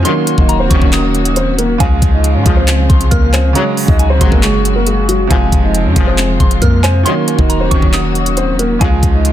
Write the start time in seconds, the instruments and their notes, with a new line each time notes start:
0.03 brass ensemble A#1 F#2 D#3, felt piano D#3 F#3, string section D#3 F#3 A#3 F#4, grand piano C#4 C#5, synth bell C6, closed hi-hat
0.08 felt piano A#3
0.27 closed hi-hat
0.35 808-style bass D#1, felt piano D#3 F#3, grand piano D#4 D#5, kick
0.40 felt piano A#3
0.49 synth bell A#5, closed hi-hat
0.60 grand piano C4 C5
0.68 808-style bass D#1, brass ensemble A#1 F#2 D#3, felt piano D#3 F#3, synth bell C#6, kick, closed hi-hat
0.73 felt piano C#4
0.82 808-style bass D#1, grand piano C#4 C#5, kick
0.93 synth bell D#6, clap, closed hi-hat
1.15 closed hi-hat
1.25 closed hi-hat
1.36 grand piano C4 C5, closed hi-hat
1.58 grand piano A#3 A#4, closed hi-hat
1.78 brass ensemble G#1 F2 C#3, 808-style bass C#2, felt piano C#3 F3, string section C#3 F3 G#3 F4, grand piano F4 F5, synth bell G#5, kick, closed hi-hat
1.83 felt piano G#3
2.02 808-style bass C#2, kick, closed hi-hat
2.13 grand piano D#4 D#5
2.24 closed hi-hat
2.35 808-style bass G#2, grand piano C#4 C#5
2.43 808-style bass C#2, brass ensemble C#2 G#2 F3, felt piano C#3 F3, kick, closed hi-hat
2.48 felt piano G#3
2.55 felt piano C#3 F3, grand piano C4 C5
2.60 felt piano G#3
2.68 clap, closed hi-hat
2.89 808-style bass C2, synth bell C6, kick, closed hi-hat
3.01 closed hi-hat
3.11 808-style bass C#2, grand piano A#3 A#4, synth bell F6, kick, closed hi-hat
3.33 grand piano C4 C5, synth bell G#5, clap, closed hi-hat
3.53 brass ensemble C#2 G#2 F#3, felt piano C#3 F#3, string section F#3 G#3 F#4, grand piano C#4 C#5, synth bell A#5, closed hi-hat
3.58 felt piano G#3
3.77 open hi-hat
3.86 808-style bass C#2, felt piano C#3 F#3, grand piano D#4 D#5, kick
3.91 felt piano G#3
3.99 synth bell G#5, closed hi-hat
4.10 grand piano C4 C5
4.18 808-style bass F1, brass ensemble C#2 G#2 F#3, felt piano C#3 F#3, synth bell C6, kick, closed hi-hat
4.23 felt piano G#3
4.32 808-style bass F#1, grand piano A#3 A#4, kick
4.43 grand piano G#3 G#4, synth bell C#6, clap, closed hi-hat
4.65 closed hi-hat
4.76 grand piano A#3 A#4
4.87 grand piano G#3 G#4, closed hi-hat
5.09 grand piano F#3 F#4, closed hi-hat
5.27 808-style bass F1, brass ensemble G#1 F2 C3, felt piano C3 F3, string section C3 F3 F4, grand piano F4 F5, synth bell G#5, kick, closed hi-hat
5.32 felt piano G#3
5.52 808-style bass F1, kick, closed hi-hat
5.63 grand piano D#4 D#5
5.75 closed hi-hat
5.85 808-style bass F2, grand piano C#4 C#5
5.93 808-style bass F1, brass ensemble C2 G#2 F3, felt piano C3 F3, kick, closed hi-hat
5.98 felt piano G#3
6.04 felt piano C3 F3, grand piano C4 C5
6.09 felt piano G#3
6.18 clap, closed hi-hat
6.40 808-style bass F1, synth bell C6, kick, closed hi-hat
6.51 closed hi-hat
6.62 808-style bass F2, grand piano A#3 A#4, synth bell F6, kick, closed hi-hat
6.83 grand piano C4 C5, synth bell G#5, clap, closed hi-hat
7.03 brass ensemble A#1 F#2 D#3, felt piano D#3 F#3, string section D#3 F#3 A#3 F#4, grand piano C#4 C#5, synth bell C6, closed hi-hat
7.08 felt piano A#3
7.28 closed hi-hat
7.36 808-style bass D#1, felt piano D#3 F#3, grand piano D#4 D#5, kick
7.41 felt piano A#3
7.49 synth bell A#5, closed hi-hat
7.61 grand piano C4 C5
7.69 808-style bass D#1, brass ensemble A#1 F#2 D#3, felt piano D#3 F#3, synth bell C#6, kick, closed hi-hat
7.74 felt piano C#4
7.82 808-style bass D#1, grand piano C#4 C#5, kick
7.93 synth bell D#6, clap, closed hi-hat
8.15 closed hi-hat
8.26 closed hi-hat
8.37 grand piano C4 C5, closed hi-hat
8.59 grand piano A#3 A#4, closed hi-hat
8.79 brass ensemble G#1 F2 C#3, 808-style bass C#2, felt piano C#3 F3, string section C#3 F3 G#3 F4, grand piano F4 F5, synth bell G#5, kick, closed hi-hat
8.84 felt piano G#3
9.03 808-style bass C#2, kick, closed hi-hat
9.14 grand piano D#4 D#5
9.25 closed hi-hat